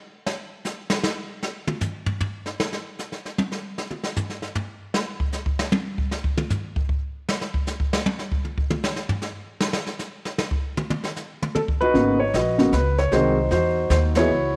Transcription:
0.26 snare
0.65 snare, hi-hat pedal
0.90 snare
1.03 snare
1.43 snare
1.67 mid tom
1.81 floor tom, hi-hat pedal
2.06 floor tom
2.20 floor tom
2.46 snare
2.60 snare
2.73 snare
2.99 snare, hi-hat pedal
3.12 snare
3.25 snare
3.38 high tom
3.52 snare
3.78 snare
3.91 mid tom
4.03 snare
4.16 floor tom, hi-hat pedal
4.30 snare
4.42 snare
4.55 floor tom
4.94 snare
5.20 kick
5.33 snare, hi-hat pedal
5.46 kick
5.59 snare
5.72 high tom
5.98 kick
6.11 snare
6.24 kick
6.37 mid tom
6.50 floor tom, hi-hat pedal
6.76 kick
6.89 kick
7.29 snare
7.41 snare
7.54 kick
7.67 snare, hi-hat pedal
7.80 kick
7.93 snare
8.06 high tom
8.19 snare
8.32 kick
8.45 mid tom
8.58 kick
8.70 mid tom
8.83 snare, hi-hat pedal
8.96 snare
9.09 floor tom
9.22 snare
9.60 snare
9.73 snare
9.86 snare
9.99 snare, hi-hat pedal
10.25 snare
10.38 snare
10.51 kick
10.77 mid tom
10.90 mid tom
11.03 snare
11.16 snare, hi-hat pedal
11.42 mid tom
11.55 grand piano A4, mid tom
11.68 kick
11.81 grand piano D#4 F#4 B4, mid tom
11.94 upright bass G#1, grand piano C#3 A#3 B3 F#4, brush sweep, snare
12.20 grand piano C#5
12.34 upright bass A#1, grand piano F#4 B4 D#5, kick, snare, hi-hat pedal
12.58 grand piano C#3 A#3 B3 F#4, snare
12.72 upright bass C#2, grand piano B4, snare, hi-hat pedal
12.98 grand piano C#5, snare
13.12 upright bass C2, grand piano D#3 G#3 C4 D#4 F#4 C5, brush sweep, kick, snare
13.51 upright bass E2, grand piano D#4 F#4 C5, kick, snare
13.90 upright bass D#2, grand piano C5, snare, hi-hat pedal
14.15 grand piano E3 B3 D#4 E4 F#4 G#4 C#5, snare, ride
14.29 upright bass C#2, brush sweep

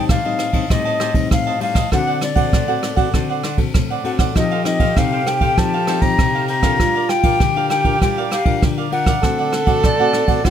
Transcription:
Already playing: nylon-string guitar G3 C4 D#4
0.09 nylon-string guitar A2, cavaquinho G4 C5 D#5 A5, flute F5, kick, cross-stick, ride
0.25 nylon-string guitar G3 C4 D#4, cavaquinho C5 D#5 A5
0.39 cross-stick, ride
0.53 nylon-string guitar G3 C4 D#4, cavaquinho C5 D#5 A5, kick, ride
0.63 flute F5
0.70 nylon-string guitar A2 G3 C4 D#4, cavaquinho G4 C5 D#5 A5, flute D#5, kick, cross-stick, ride
0.85 cavaquinho C5 D#5 A5
1.00 cavaquinho G4 C5 D#5 A5, cross-stick, ride
1.14 nylon-string guitar G3 C4 D#4, muted cavaquinho stroke, kick, ride
1.31 nylon-string guitar A2, flute F5, kick, cross-stick, ride
1.47 cavaquinho C5 D#5 A5
1.60 nylon-string guitar G3 C4 D#4, cavaquinho G4 C5 D#5 A5, flute F5, ride
1.75 cavaquinho C5 D#5 A5, kick, cross-stick, ride
1.92 nylon-string guitar D3 C4 F#4 A4, cavaquinho D4 C5 D5 F#5, flute F#5, kick, cross-stick, ride
2.07 cavaquinho C5 D5 F#5
2.21 flute D5, muted cavaquinho stroke, cross-stick, ride
2.35 nylon-string guitar C4 F#4 A4, cavaquinho C5 D5 F#5, kick, ride
2.52 nylon-string guitar A2, cavaquinho D4 C5 D5 F#5, kick, cross-stick, ride
2.68 nylon-string guitar C4 F#4 A4, cavaquinho C5 D5 F#5
2.83 cross-stick, ride
2.96 nylon-string guitar C4 F#4 A4, cavaquinho C5 D5 F#5, kick, ride
3.13 nylon-string guitar D3 C4 F#4 A4, cavaquinho D4 C5 D5 F#5, kick, cross-stick, ride
3.30 cavaquinho C5 D5 F#5
3.43 cavaquinho D4 C5 D5 F#5, cross-stick, ride
3.57 nylon-string guitar C4 F#4 A4, muted cavaquinho stroke, kick, ride
3.74 nylon-string guitar A2, kick, cross-stick, ride
3.90 cavaquinho C5 D5 F#5
4.04 nylon-string guitar C4 F#4 A4, cavaquinho D4 C5 D5 F#5, flute F#5, ride
4.19 cavaquinho C5 D5 F#5, kick, cross-stick, ride
4.35 nylon-string guitar F3 C4 D#4 A4, cavaquinho D#4 A4 C5 F5, tenor saxophone G4, flute D#5, kick, cross-stick, ride
4.52 cavaquinho A4 C5 F5
4.65 nylon-string guitar C4 D#4 A4, flute D#5, muted cavaquinho stroke, cross-stick, ride
4.80 cavaquinho A4 C5 F5, kick, ride
4.96 nylon-string guitar C3 C4 D#4 A4, cavaquinho D#4 A4 C5 F5, flute F5, kick, cross-stick, ride
5.12 cavaquinho A4 C5 F5
5.26 nylon-string guitar C4 D#4 A4, flute G5, cross-stick, ride
5.41 cavaquinho A4 C5 F5, kick, ride
5.57 nylon-string guitar F3 C4 D#4 A4, cavaquinho D#4 A4 C5 F5, flute A5, kick, cross-stick, ride
5.74 cavaquinho A4 C5 F5
5.87 nylon-string guitar C4 D#4 A4, cavaquinho D#4 A4 C5 F5, cross-stick, ride
6.02 nylon-string guitar C4 D#4, flute A#5, muted cavaquinho stroke, kick, ride
6.19 nylon-string guitar C3, kick, cross-stick, ride
6.35 cavaquinho A4 C5 F5
6.48 cavaquinho D#4 A4 C5 F5, flute A#5, ride
6.63 nylon-string guitar D4 F4 A#4, cavaquinho A4 C5 F5, kick, cross-stick, ride
6.79 nylon-string guitar G3, tenor saxophone F4, cavaquinho G4 A#4 D5 F5, kick, cross-stick, ride
6.95 cavaquinho A#4 D5 F5
7.09 flute G5, muted cavaquinho stroke, cross-stick, ride
7.23 nylon-string guitar D4 F4 A#4, cavaquinho A#4 D5 F5, kick, ride
7.40 nylon-string guitar D3, tenor saxophone G4, cavaquinho G4 A#4 D5 F5, kick, cross-stick, ride
7.56 nylon-string guitar D4 F4 A#4, cavaquinho A#4 D5 F5
7.70 flute G5, cross-stick, ride
7.84 nylon-string guitar D4 F4 A#4, cavaquinho A#4 D5 F5, kick, ride
8.01 nylon-string guitar G3 D4 F4 A#4, cavaquinho G4 A#4 D5 F5, flute G5, kick, cross-stick, ride
8.18 cavaquinho A#4 D5 F5
8.31 cavaquinho G4 A#4 D5 F5, flute F5, cross-stick, ride
8.45 nylon-string guitar D4 F4 A#4, muted cavaquinho stroke, kick, ride
8.62 nylon-string guitar D3, kick, cross-stick, ride
8.78 cavaquinho A#4 D5 F5
8.92 nylon-string guitar D4 F4 A#4, cavaquinho G4 A#4 D5 F5, flute F#5, ride
9.06 cavaquinho A#4 D5 F5, kick, cross-stick, ride
9.23 nylon-string guitar D3 A3 C4 F#4, cavaquinho D4 C5 D5 F#5, tenor saxophone A4, kick, cross-stick, ride
9.39 cavaquinho C5 D5 F#5
9.53 muted cavaquinho stroke, cross-stick, ride
9.66 nylon-string guitar A3 C4 F#4, cavaquinho C5 D5 F#5, kick, ride
9.83 nylon-string guitar A2, cavaquinho D4 C5 D5 F#5, flute D5, kick, cross-stick, ride
10.00 nylon-string guitar A3 C4 F#4, cavaquinho C5 D5 F#5
10.13 cross-stick, ride
10.28 nylon-string guitar A3 C4 F#4, cavaquinho C5 D5 F#5, kick, ride
10.44 nylon-string guitar D3 A3 C4 F#4, cavaquinho D4 C5 D5 F#5, tenor saxophone F#4, flute F#5, kick, cross-stick, ride

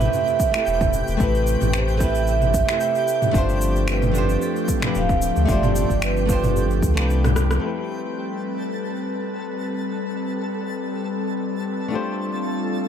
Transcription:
Already playing: analog synth pad C3 A3 G4 B4, nylon-string guitar A3 C4 E4 G4 B4, synth texture G4 G5, vibraphone E5
0.01 mid tom, shaker
0.13 vibraphone E5, shaker
0.28 shaker
0.40 kick, shaker
0.51 nylon-string guitar A3 C4 E4, finger snap, shaker
0.56 nylon-string guitar G4 A4
0.67 sub bass E1, shaker
0.81 kick, mid tom, shaker
0.93 shaker
1.08 sub bass E1, shaker
1.17 sub bass A1, nylon-string guitar A3 C4 E4, kick, shaker
1.21 nylon-string guitar G4 B4, vibraphone B4
1.35 shaker
1.47 shaker
1.61 sub bass A1, mid tom, shaker
1.73 vibraphone C5, finger snap, shaker
1.88 shaker
1.97 nylon-string guitar A3 C4 E4, kick, shaker
2.02 nylon-string guitar G4 B4, vibraphone E5
2.15 shaker
2.27 vibraphone E5, shaker
2.41 mid tom, shaker
2.54 kick, shaker
2.65 nylon-string guitar A3 C4 E4, finger snap, shaker
2.70 nylon-string guitar G4 A4
2.81 vibraphone E5, shaker
2.95 shaker
3.08 shaker
3.22 mid tom, shaker
3.31 sub bass G1, analog synth pad F3 C4, nylon-string guitar A3 D4 F4, kick, shaker
3.35 analog synth pad A3 G4, nylon-string guitar G4 C5, vibraphone C5
3.49 shaker
3.61 shaker
3.76 shaker
3.88 vibraphone B4, finger snap, shaker
4.02 mid tom, shaker
4.12 nylon-string guitar A3 D4 F4, shaker
4.17 nylon-string guitar G4 C5
4.29 shaker
4.42 vibraphone A4, shaker
4.56 shaker
4.68 kick, shaker
4.80 nylon-string guitar A3 D4 F4, finger snap, mid tom, shaker
4.84 nylon-string guitar G4 B4
4.95 sub bass D1, vibraphone F5, shaker
5.09 kick, shaker
5.22 shaker
5.36 sub bass D2, shaker
5.43 nylon-string guitar A3 D4, vibraphone E5
5.48 sub bass G1, nylon-string guitar F4 G4 C5, vibraphone D5, kick, shaker
5.63 mid tom, shaker
5.76 shaker
5.90 sub bass G1, kick, shaker
6.02 vibraphone B4, finger snap, shaker
6.17 shaker
6.25 nylon-string guitar A3 D4 F4, kick, shaker
6.31 nylon-string guitar G4 C5
6.43 mid tom, shaker
6.56 vibraphone A4, shaker
6.71 shaker
6.82 sub bass D2, kick, shaker
6.94 sub bass C2, nylon-string guitar A3 D4 F4, finger snap, shaker
6.99 nylon-string guitar G4 B4
7.10 shaker
7.24 cross-stick, mid tom, shaker
7.36 cross-stick, shaker
7.51 cross-stick, shaker
7.60 analog synth pad G3 C4 A4, nylon-string guitar A3 C4 E4, synth texture A4 A5
7.64 nylon-string guitar G4 B4, analog synth pad B4
11.88 nylon-string guitar A3 D4 F4, analog synth pad F4
11.93 nylon-string guitar G4 C5

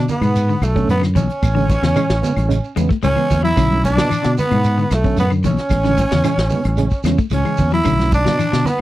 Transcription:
0.09 trumpet B3, tenor saxophone B3, closed hi-hat, low conga, shekere
0.21 fingered electric bass G#2, clean electric guitar B2, closed hi-hat, high conga, claves, shekere
0.35 closed hi-hat, high conga, shekere
0.49 clean electric guitar D3, shekere
0.62 fingered electric bass B1, tenor saxophone A3, trumpet A3, closed hi-hat, high conga, claves, shekere
0.75 clean electric guitar B2, reed electric piano D3 A3 C#4, kick, shekere
0.88 fingered electric bass F#2, trumpet B3, tenor saxophone B3, closed hi-hat, high conga, shekere
1.01 clean electric guitar D3, snare, claves, shekere
1.15 fingered electric bass B1, clean electric guitar E3, trumpet C#4, tenor saxophone C#4, kick, closed hi-hat, low conga, shekere
1.30 closed hi-hat, shekere
1.42 fingered electric bass A1, reed electric piano G#3 B3, kick, closed hi-hat, high conga, claves, shekere
1.55 reed electric piano C#3 G#3 C#4, clean electric guitar D3, high conga, shekere
1.69 kick, closed hi-hat, high conga, shekere
1.82 fingered electric bass E2, clean electric guitar C#3, snare, shekere
1.96 reed electric piano C#3 G#3 C#4, clean electric guitar E3, closed hi-hat, high conga, claves, shekere
2.10 fingered electric bass A1, snare, shekere
2.22 reed electric piano C#3 G#3 B3, snare, closed hi-hat, low conga, shekere
2.36 fingered electric bass A1, closed hi-hat, high conga, claves, shekere
2.49 reed electric piano C#3 G#3 C#4, closed hi-hat, high conga, shekere
2.64 shekere
2.76 fingered electric bass E2, reed electric piano C#3 G#3 B3, clean electric guitar G#3, closed hi-hat, high conga, claves, shekere
2.89 clean electric guitar A3, kick, shekere
3.03 fingered electric bass C#2, clean electric guitar G#3, tenor saxophone C#4, trumpet C#4, closed hi-hat, high conga, shekere
3.16 reed electric piano C#3 G#3 B3, clean electric guitar E3, claves, shekere
3.31 fingered electric bass E2, kick, closed hi-hat, low conga, shekere
3.43 clean electric guitar F#3, trumpet E4, tenor saxophone E4, shekere
3.56 fingered electric bass B1, reed electric piano D3 A3 C#4, clean electric guitar D3, kick, closed hi-hat, high conga, claves, shekere
3.71 high conga, shekere
3.84 trumpet D4, tenor saxophone D4, kick, closed hi-hat, high conga, shekere
3.96 fingered electric bass B2, clean electric guitar F#3, snare, low conga, shekere
4.10 clean electric guitar E3, muted fingered electric bass stroke, closed hi-hat, high conga, claves, shekere
4.23 fingered electric bass B2, clean electric guitar D3, snare, shekere
4.37 trumpet B3, tenor saxophone B3, closed hi-hat, high conga, low conga, shekere
4.51 fingered electric bass G#2, clean electric guitar B2, closed hi-hat, high conga, claves, shekere
4.63 closed hi-hat, high conga, shekere
4.78 clean electric guitar D3, shekere
4.91 fingered electric bass B1, trumpet A3, tenor saxophone A3, snare, closed hi-hat, high conga, claves, shekere
5.04 clean electric guitar B2, reed electric piano D3 A3 C#4, kick, shekere
5.17 fingered electric bass F#2, trumpet B3, tenor saxophone B3, closed hi-hat, high conga, shekere
5.30 clean electric guitar D3, claves, shekere
5.44 fingered electric bass B1, clean electric guitar E3, trumpet C#4, tenor saxophone C#4, kick, closed hi-hat, low conga, shekere
5.57 snare, closed hi-hat, shekere
5.70 fingered electric bass A1, reed electric piano G#3 B3, kick, closed hi-hat, high conga, claves, shekere
5.84 reed electric piano C#3 G#3 C#4, clean electric guitar D3, snare, high conga, shekere
5.97 kick, snare, closed hi-hat, high conga, shekere
6.10 fingered electric bass E2, clean electric guitar C#3, snare, low conga, shekere
6.24 reed electric piano C#3 G#3 C#4, clean electric guitar E3, closed hi-hat, high conga, claves, shekere
6.38 fingered electric bass A1, snare, shekere
6.50 reed electric piano C#3 G#3 B3, open hi-hat, high conga, low conga, shekere
6.64 fingered electric bass A1, closed hi-hat, high conga, claves, shekere
6.77 reed electric piano C#3 G#3 C#4, closed hi-hat, shekere
6.90 kick, shekere
7.04 fingered electric bass E2, reed electric piano C#3 G#3 C#4, clean electric guitar G#3, snare, closed hi-hat, high conga, claves, shekere
7.18 clean electric guitar A3, kick, shekere
7.30 fingered electric bass C#2, clean electric guitar G#3, trumpet C#4, tenor saxophone C#4, closed hi-hat, high conga, shekere
7.44 reed electric piano C#3 G#3 C#4, clean electric guitar E3, claves, shekere
7.57 fingered electric bass E2, kick, closed hi-hat, low conga, shekere
7.71 clean electric guitar F#3, trumpet E4, tenor saxophone E4, shekere
7.85 fingered electric bass B1, reed electric piano D3 A3 C#4, clean electric guitar D3, kick, closed hi-hat, claves, shekere
7.99 snare, high conga, shekere
8.12 trumpet D4, tenor saxophone D4, kick, closed hi-hat, high conga, shekere
8.25 fingered electric bass B2, clean electric guitar F#3, snare, low conga, shekere
8.39 clean electric guitar E3, muted fingered electric bass stroke, snare, closed hi-hat, claves, shekere
8.52 fingered electric bass B2, clean electric guitar D3, snare, shekere
8.65 tenor saxophone B3, trumpet B3, closed hi-hat, high conga, low conga, shekere

